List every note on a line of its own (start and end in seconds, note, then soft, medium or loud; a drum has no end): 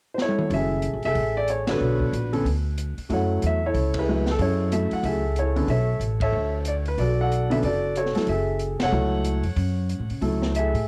0.14 0.19 C5 medium
0.14 snare medium
0.21 0.81 E4 medium
0.21 0.54 A4 medium
0.21 0.53 C#5 medium
0.29 high tom medium
0.38 mid tom medium
0.50 0.91 F#1 medium
0.50 1.04 E5 medium
0.50 kick soft
0.50 open hi-hat soft
0.55 1.05 G#4 medium
0.55 1.05 A4 medium
0.82 closed hi-hat soft
0.93 1.04 G#1 medium
1.03 1.15 F1 medium
1.03 1.66 G#4 medium
1.03 1.66 A4 medium
1.03 1.38 E5 loud
1.03 open hi-hat soft
1.15 1.77 A1 medium
1.15 kick soft
1.15 open hi-hat soft
1.37 1.48 D5 medium
1.48 1.67 C#5 medium
1.48 closed hi-hat medium
1.67 2.11 D3 medium
1.67 2.11 B3 medium
1.67 2.11 A4 medium
1.67 2.30 B4 medium
1.67 2.11 C#5 medium
1.67 snare medium
1.67 ride medium
1.71 2.31 D4 medium
1.71 2.31 F#4 medium
1.81 2.11 B1 medium
2.00 kick medium
2.12 2.43 A#1 medium
2.12 closed hi-hat soft
2.33 2.44 D3 medium
2.33 2.44 B3 medium
2.33 2.44 C#4 medium
2.33 2.44 A4 medium
2.33 open hi-hat soft
2.45 2.94 D2 medium
2.45 kick soft
2.45 open hi-hat soft
2.78 closed hi-hat medium
2.98 muted upright bass stroke soft
2.98 open hi-hat soft
3.09 3.40 F#2 medium
3.09 3.58 F#3 medium
3.09 3.59 A3 soft
3.09 3.58 E4 medium
3.09 3.59 A4 medium
3.09 kick soft
3.09 open hi-hat soft
3.13 3.65 C#5 medium
3.13 3.45 F#5 medium
3.42 3.73 E2 medium
3.42 closed hi-hat soft
3.47 3.65 E5 medium
3.66 3.98 E4 medium
3.66 4.25 A4 medium
3.66 3.98 C#5 medium
3.74 4.36 C#2 medium
3.74 kick soft
3.74 open hi-hat soft
3.94 kick medium
3.94 ride medium
3.99 4.07 E4 medium
3.99 4.58 G#4 medium
3.99 4.08 B4 medium
4.08 4.26 F#3 medium
4.08 4.26 A3 medium
4.08 4.26 E4 medium
4.08 4.26 B4 medium
4.26 snare medium
4.26 open hi-hat soft
4.31 4.39 A4 medium
4.39 4.88 F#2 medium
4.39 4.70 E4 medium
4.39 4.72 A4 medium
4.39 4.71 C#5 medium
4.39 kick soft
4.39 open hi-hat soft
4.72 5.20 F#3 medium
4.72 5.21 A3 medium
4.72 5.20 E4 medium
4.72 5.04 A4 medium
4.72 4.93 E5 medium
4.72 closed hi-hat soft
4.91 5.04 F#5 medium
4.91 muted upright bass stroke soft
4.91 open hi-hat soft
5.03 5.65 C#2 medium
5.03 5.66 G#4 medium
5.03 5.38 A4 medium
5.03 5.38 E5 medium
5.03 kick soft
5.03 open hi-hat soft
5.36 5.68 E4 medium
5.36 5.55 A4 medium
5.36 5.68 C#5 medium
5.36 closed hi-hat soft
5.56 5.67 D3 medium
5.56 5.68 B3 medium
5.56 5.68 C#4 medium
5.56 5.68 A4 medium
5.56 open hi-hat soft
5.67 5.98 B1 medium
5.67 6.21 A4 medium
5.67 6.21 C#5 medium
5.67 6.00 E5 medium
5.67 kick soft
5.67 open hi-hat soft
6.00 6.31 A1 medium
6.00 closed hi-hat soft
6.20 6.83 A4 medium
6.20 6.83 C#5 medium
6.20 6.52 E5 medium
6.20 kick medium
6.20 ride medium
6.32 6.95 D2 medium
6.65 6.72 D5 medium
6.65 closed hi-hat medium
6.85 6.99 B4 medium
6.85 open hi-hat soft
6.98 7.60 B1 medium
6.98 7.60 F#4 soft
6.98 7.21 A4 medium
6.98 7.17 D5 medium
6.98 kick soft
6.98 open hi-hat soft
7.21 7.49 A4 medium
7.21 7.63 D5 medium
7.21 7.53 F#5 medium
7.32 closed hi-hat soft
7.50 7.62 D3 medium
7.50 7.62 B3 medium
7.50 7.62 C#4 medium
7.50 7.62 A4 medium
7.50 7.57 E5 medium
7.50 open hi-hat soft
7.63 8.12 F#1 medium
7.63 7.96 F#4 medium
7.63 7.96 A4 medium
7.63 7.97 D5 medium
7.63 kick soft
7.63 open hi-hat soft
7.95 8.27 F#4 medium
7.95 8.14 A4 medium
7.95 8.27 C#5 medium
7.95 closed hi-hat medium
8.06 snare soft
8.15 8.27 F#3 medium
8.15 8.27 A3 medium
8.15 8.27 E4 medium
8.15 8.27 A4 medium
8.15 muted upright bass stroke soft
8.15 snare soft
8.15 open hi-hat soft
8.27 8.76 F#1 medium
8.27 8.90 G#4 medium
8.27 8.59 E5 medium
8.27 kick soft
8.27 open hi-hat soft
8.31 8.82 A4 medium
8.59 closed hi-hat soft
8.80 8.91 F1 medium
8.80 8.91 A4 medium
8.80 10.52 C#5 medium
8.80 10.61 F#5 loud
8.80 snare medium
8.80 ride medium
8.92 9.41 C#2 medium
8.92 9.41 F#3 medium
8.92 9.41 A3 medium
8.92 9.41 E4 medium
8.92 9.41 A4 medium
9.24 closed hi-hat medium
9.43 9.56 F2 medium
9.43 open hi-hat soft
9.56 9.97 F#2 medium
9.56 kick soft
9.56 open hi-hat soft
9.89 closed hi-hat soft
9.99 10.10 A2 medium
10.10 10.21 C#3 medium
10.10 open hi-hat soft
10.21 10.71 C#2 medium
10.21 10.70 F#3 medium
10.21 10.70 A3 medium
10.21 10.71 E4 medium
10.21 10.57 A4 medium
10.21 kick soft
10.21 open hi-hat soft
10.42 snare soft
10.55 10.87 G#4 medium
10.55 10.87 A4 medium
10.55 10.86 E5 medium
10.55 closed hi-hat medium
10.74 10.86 A2 medium
10.74 open hi-hat soft